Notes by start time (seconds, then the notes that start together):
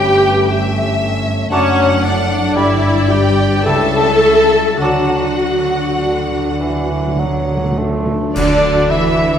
Already playing: G1 G2 A3 C#4 E4 G4 B4 C#5 G5
0.15 A4
0.47 E4 E5
0.82 G3
1.18 C#4
1.50 F#1 F#2 F#3 C#4 D4 C#5 D5 F#5 A5
1.86 A3
2.03 D4 D5
2.20 F#4 A4
2.53 G1 G2 G3 E4 D5 E5 B5
2.58 D5
2.91 G3
3.08 G4 G5
3.28 E4 B4
3.64 C#2 C#3 G3 E4 A4 E5 A5
4.04 G3
4.42 E4 A4
4.78 D2 D3 F#3 D4 F#4 D5 F#5 A5
4.97 D3
5.05 D3
5.15 D3
5.22 D3
5.38 D3
5.47 D3
5.53 D3
5.60 D3 A4
5.71 D3
5.80 D3
5.89 D3
6.00 D3 F#4
6.05 D3
6.12 D3
6.23 D3
6.30 D3
6.39 D3 D5
6.48 D3
6.57 D3 E3
6.65 D3
6.75 D3
6.79 F#4
6.91 D3
7.00 D3
7.07 D3
7.16 D3 F#3 A4
7.24 D3
7.31 D3
7.40 D3
7.48 D3
7.57 D3 F#3
7.64 D3
7.72 D3
7.78 D3 A3
7.89 D3
7.98 D3 D4
8.06 D3
8.13 D3
8.22 D3
8.34 D2 D3 D4 F#4 A4 D5, concert bass drum, crash
8.74 D4
8.90 E3 E4 E5